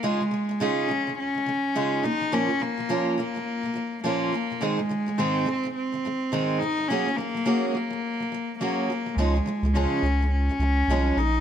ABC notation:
X:1
M:4/4
L:1/16
Q:"Swing 16ths" 1/4=105
K:Db
V:1 name="Cello"
A,4 D4 D6 E2 | D2 B,4 B,6 B,4 | A,4 C4 C6 E2 | D2 B,4 B,6 B,4 |
A,4 D4 D6 E2 |]
V:2 name="Steel-string acoustic guitar" clef=bass
[D,A,EFA] [D,A,] [D,A,] [D,A,] [D,A,EFA]2 [D,A,] [D,A,]2 [D,A,] [D,A,]2 [D,A,EFA]2 [B,,F,B,] [B,,F,B,] | [B,,F,B,DFB] [B,,F,B,] [B,,F,B,] [B,,F,B,] [B,,F,B,DFB]2 [B,,F,B,] [B,,F,B,]2 [B,,F,B,] [B,,F,B,]2 [B,,F,B,DFB]2 [B,,F,B,] [B,,F,B,] | [A,,E,A,CEA] [A,,E,A,] [A,,E,A,] [A,,E,A,] [A,,E,A,CEA]2 [A,,E,A,] [A,,E,A,]2 [A,,E,A,] [A,,E,A,]2 [A,,E,A,CEA]2 [A,,A,] [A,,E,A,] | [G,B,DGA] [G,B,] [G,B,] [G,B,] [G,B,DGA]2 [G,B,] [G,B,]2 [G,B,] [G,B,]2 [G,B,DGA]2 [G,B,] [G,B,] |
[D,F,A,DEA] [D,F,A,] [D,F,A,] [D,F,A,] [D,F,A,DEA]2 [D,F,A,] [D,F,A,]2 [D,F,A,] [D,F,A,]2 [D,F,A,DEA]2 [B,,F,B,]2 |]
V:3 name="Sub bass" clef=bass
z16 | z16 | z16 | z16 |
D,,2 z D,,2 z D,,4 D,,2 C,,2 B,,,2 |]